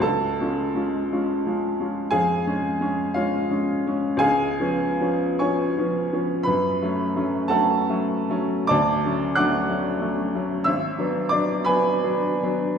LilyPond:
<<
  \new Staff \with { instrumentName = "Upright piano" } { \time 12/8 \key cis \phrygian \tempo 4. = 58 <a' a''>2. <gis' eis'' gis''>4. <eis' cis'' eis''>8 r4 | <gis' eis'' gis''>4. <cis'' gis'' cis'''>4. <b' b''>4. <a' fis'' a''>4. | <d'' a'' d'''>4 <fis'' d''' fis'''>2 <e'' e'''>4 <d'' d'''>8 <b' gis'' b''>4. | }
  \new Staff \with { instrumentName = "Upright piano" } { \time 12/8 \key cis \phrygian cis,8 <gis cis' eis'>8 <gis cis' eis'>8 <gis cis' eis'>8 <gis cis' eis'>8 <gis cis' eis'>8 eis,8 <gis cis'>8 <gis cis'>8 <gis cis'>8 <gis cis'>8 <gis cis'>8 | cis,8 <eis b cis'>8 <eis b cis'>8 <eis b cis'>8 <eis b cis'>8 <eis b cis'>8 fis,8 <fis a cis'>8 <fis a cis'>8 <fis a cis'>8 <fis a cis'>8 <fis a cis'>8 | d,8 <fis a cis'>8 <fis a cis'>8 <fis a cis'>8 <fis a cis'>8 <fis a cis'>8 gis,,8 <fis b d'>8 <fis b d'>8 <fis b d'>8 <fis b d'>8 <fis b d'>8 | }
>>